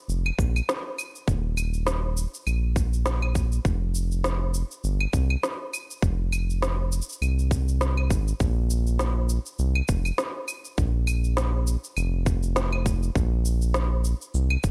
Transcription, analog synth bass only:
0, 0, Header, 1, 2, 480
1, 0, Start_track
1, 0, Tempo, 594059
1, 1030, Time_signature, 4, 2, 24, 8
1, 11884, End_track
2, 0, Start_track
2, 0, Title_t, "Analog synth bass"
2, 0, Program_c, 0, 38
2, 68, Note_on_c, 0, 29, 91
2, 253, Note_off_c, 0, 29, 0
2, 310, Note_on_c, 0, 34, 84
2, 494, Note_off_c, 0, 34, 0
2, 1031, Note_on_c, 0, 27, 91
2, 1828, Note_off_c, 0, 27, 0
2, 1993, Note_on_c, 0, 34, 90
2, 2906, Note_off_c, 0, 34, 0
2, 2949, Note_on_c, 0, 29, 85
2, 3747, Note_off_c, 0, 29, 0
2, 3909, Note_on_c, 0, 31, 88
2, 4093, Note_off_c, 0, 31, 0
2, 4148, Note_on_c, 0, 36, 84
2, 4333, Note_off_c, 0, 36, 0
2, 4867, Note_on_c, 0, 29, 88
2, 5665, Note_off_c, 0, 29, 0
2, 5830, Note_on_c, 0, 36, 86
2, 6544, Note_off_c, 0, 36, 0
2, 6549, Note_on_c, 0, 32, 85
2, 6733, Note_off_c, 0, 32, 0
2, 6789, Note_on_c, 0, 34, 89
2, 7587, Note_off_c, 0, 34, 0
2, 7749, Note_on_c, 0, 36, 90
2, 7933, Note_off_c, 0, 36, 0
2, 7991, Note_on_c, 0, 29, 81
2, 8174, Note_off_c, 0, 29, 0
2, 8709, Note_on_c, 0, 34, 87
2, 9507, Note_off_c, 0, 34, 0
2, 9669, Note_on_c, 0, 29, 96
2, 10585, Note_off_c, 0, 29, 0
2, 10629, Note_on_c, 0, 34, 93
2, 11427, Note_off_c, 0, 34, 0
2, 11589, Note_on_c, 0, 36, 95
2, 11773, Note_off_c, 0, 36, 0
2, 11826, Note_on_c, 0, 29, 86
2, 11884, Note_off_c, 0, 29, 0
2, 11884, End_track
0, 0, End_of_file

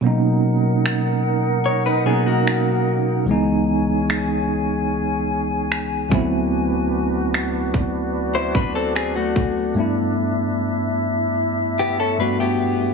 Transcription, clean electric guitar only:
0, 0, Header, 1, 2, 480
1, 0, Start_track
1, 0, Tempo, 810811
1, 20, Time_signature, 4, 2, 24, 8
1, 7659, End_track
2, 0, Start_track
2, 0, Title_t, "Clean electric guitar"
2, 0, Program_c, 0, 27
2, 980, Note_on_c, 0, 73, 63
2, 1094, Note_off_c, 0, 73, 0
2, 1101, Note_on_c, 0, 71, 75
2, 1104, Note_on_c, 0, 63, 65
2, 1214, Note_off_c, 0, 71, 0
2, 1216, Note_off_c, 0, 63, 0
2, 1220, Note_on_c, 0, 68, 74
2, 1223, Note_on_c, 0, 59, 62
2, 1334, Note_off_c, 0, 68, 0
2, 1336, Note_off_c, 0, 59, 0
2, 1339, Note_on_c, 0, 66, 70
2, 1343, Note_on_c, 0, 58, 60
2, 1916, Note_off_c, 0, 66, 0
2, 1918, Note_off_c, 0, 58, 0
2, 4942, Note_on_c, 0, 72, 72
2, 4945, Note_on_c, 0, 64, 58
2, 5055, Note_off_c, 0, 72, 0
2, 5057, Note_off_c, 0, 64, 0
2, 5063, Note_on_c, 0, 71, 72
2, 5067, Note_on_c, 0, 62, 66
2, 5176, Note_off_c, 0, 71, 0
2, 5178, Note_off_c, 0, 62, 0
2, 5182, Note_on_c, 0, 69, 82
2, 5186, Note_on_c, 0, 60, 66
2, 5295, Note_off_c, 0, 69, 0
2, 5297, Note_off_c, 0, 60, 0
2, 5301, Note_on_c, 0, 68, 78
2, 5304, Note_on_c, 0, 60, 66
2, 5415, Note_off_c, 0, 68, 0
2, 5416, Note_off_c, 0, 60, 0
2, 5422, Note_on_c, 0, 66, 70
2, 5426, Note_on_c, 0, 57, 60
2, 5763, Note_off_c, 0, 66, 0
2, 5765, Note_off_c, 0, 57, 0
2, 6982, Note_on_c, 0, 67, 72
2, 6986, Note_on_c, 0, 59, 60
2, 7095, Note_off_c, 0, 67, 0
2, 7097, Note_off_c, 0, 59, 0
2, 7103, Note_on_c, 0, 69, 79
2, 7106, Note_on_c, 0, 61, 65
2, 7216, Note_off_c, 0, 69, 0
2, 7217, Note_off_c, 0, 61, 0
2, 7221, Note_on_c, 0, 71, 79
2, 7224, Note_on_c, 0, 62, 68
2, 7335, Note_off_c, 0, 71, 0
2, 7336, Note_off_c, 0, 62, 0
2, 7342, Note_on_c, 0, 67, 73
2, 7346, Note_on_c, 0, 59, 61
2, 7659, Note_off_c, 0, 59, 0
2, 7659, Note_off_c, 0, 67, 0
2, 7659, End_track
0, 0, End_of_file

